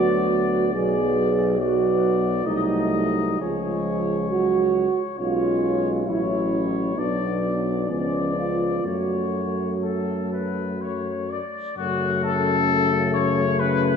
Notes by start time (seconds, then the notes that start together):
Already playing: D2 F#3 B3 F#4 D5
0.73 B1 F#3 B3 G#4 D5
1.57 F#3 B3 F#4 D5
2.45 C2 F#3 A3 D#4 D#5
3.40 C#2 F3 G#3 G#4 C#5
4.30 F#3 F#4
5.18 B1 G#3 C#4 F4 C#5
6.07 A1 F#3 C#4 E4 C#5
6.95 B1 F#3 B3 D4 D5
7.88 C#2 F3 B3 C#4 D5
8.35 F4
8.83 F#2 F#3 A3 F#4 C#5
9.83 A4
10.33 B4
10.81 C#5
11.30 D5
11.77 F#2 C#3 A3 C#4 F#4
12.24 A4
13.15 C#5
13.60 B4